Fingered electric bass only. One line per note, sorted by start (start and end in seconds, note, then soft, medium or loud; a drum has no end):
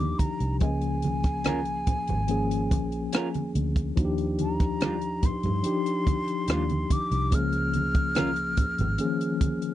0.00 0.13 D#2 medium
0.40 0.61 C2 medium
0.61 1.83 C#2 medium
1.87 muted fingered electric bass stroke soft
2.09 2.71 G#1 medium
2.71 3.06 A#1 medium
3.55 3.91 D2 medium
3.97 5.19 D#2 medium
5.23 muted fingered electric bass stroke soft
5.44 5.61 G2 medium
6.48 6.84 D#2 medium
7.11 7.33 C2 medium
7.33 8.54 C#2 medium
8.57 muted fingered electric bass stroke soft
8.79 8.96 G#1 medium